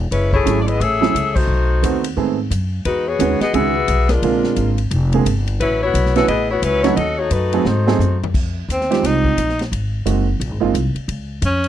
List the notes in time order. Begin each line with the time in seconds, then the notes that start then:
0.11 F#1 G#3 C#4 E4 B4, kick, ride
0.33 A3 E4 G#4 C#5, kick
0.46 G#1 F#3 A3 C#4 E4 G#4, kick, hi-hat pedal, ride
0.61 D5
0.68 B3 E4 G#4 D#5, ride
0.80 A1 C#4 G#4 A4 E5, kick, ride
1.01 F#3 A3 C#4 E4 G#4, snare
1.15 C#2, kick, hi-hat pedal, ride
1.35 A3 D#4 F#4 C5, kick, crash
1.47 B1
1.82 D#2 D#3 A3 B3 C4 F#4, kick, hi-hat pedal, ride
2.04 ride
2.17 G#2 D#3 A3 B3 C4 G#4, kick
2.50 F#2, kick, hi-hat pedal, ride
2.85 E2 G#3 D#4 F#4 B4, kick, ride
3.06 B3 F#4 G#4 C#5
3.19 D#2 D#3 G#3 B3 C#4 F#4, kick, hi-hat pedal, ride
3.40 B3 F#4 G#4 D#5, muted upright bass stroke, snare, ride
3.54 C#2 D#3 G#3 B3 C#4 F#4 G#4 E5, kick, ride
3.88 B1, kick, hi-hat pedal, ride
4.09 G#3 D4 F4 A#4, snare, ride
4.22 A#1 D3 G#3 A#3 C4 F4, kick, ride
4.44 snare
4.56 G#1, kick, hi-hat pedal, ride
4.78 ride
4.91 F1, kick, ride
5.12 D3 G#3 A#3 C4 G#4, ride
5.25 G1, kick, hi-hat pedal, ride
5.47 ride
5.60 A1 F#3 C#4 E4 B4, kick, ride
5.82 B3 E4 F#4 C#5
5.94 B1, kick, hi-hat pedal, ride
6.06 snare
6.15 E3 A3 B3 C#4 F#4 B4 E5, snare, ride
6.28 A1 B3 E4 G#4 D#5, kick, ride
6.50 B3 E4 F#4 C#5
6.62 C#2 F#3 C#4 E4 B4, kick, hi-hat pedal, ride
6.84 F#3 A3 B3 C#4 D#4 E4 F#4 C#5, snare, ride
6.96 D#2 C#4 F#4 A4 D#5, kick, ride
7.18 A3 D#4 F#4 C#5
7.31 F#2 A3 D#4 F#4 B4, kick, hi-hat pedal, ride
7.53 F#3 A3 C4 D#4 G#4, ride
7.65 G#2 A3 D#4 F#4 C5, snare
7.87 F#3 A3 C4 D#4 G#4, snare
7.99 F#2, floor tom, hi-hat pedal
8.24 floor tom
8.34 F2, kick, crash
8.69 D#2 C4, kick, hi-hat pedal, ride
8.81 snare
8.91 F3 G#3 C4 D#4 G4, snare, ride
9.03 C2 D#4, kick, snare, ride
9.24 kick
9.37 A#1, kick, hi-hat pedal, ride
9.49 snare
9.59 snare, ride
9.72 G#1, kick, ride
10.06 F#1 G#3 A#3 C4 D#4 F#4, kick, hi-hat pedal, ride
10.40 A#1, kick, ride
10.51 G#1
10.60 F#1 G#3 A#3 C4 D#4 F4
10.74 C2, kick, hi-hat pedal, ride
10.95 muted upright bass stroke, ride
11.08 C#2, kick, ride
11.42 F2 C#4, kick, hi-hat pedal, ride
11.64 ride